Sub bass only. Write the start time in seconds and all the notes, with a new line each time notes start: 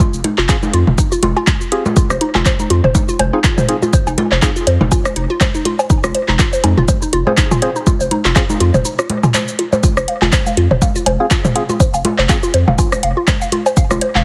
0.14 F1
0.38 F1
0.74 F2
0.87 F1
1.23 F1
2.10 F1
2.35 F1
2.70 F2
2.84 F1
3.19 F1
4.07 F1
4.32 F1
4.67 F2
4.81 F1
5.16 F1
6.04 F1
6.28 F1
6.64 F2
6.78 F1
7.13 F1
8.01 F1
8.25 F1
8.60 F2
8.74 F1
9.97 F1
10.22 F1
10.57 F2
10.71 F1
11.06 F1
11.94 F1
12.19 F1
12.54 F2
12.68 F1
13.03 F1
13.91 F1
14.15 F1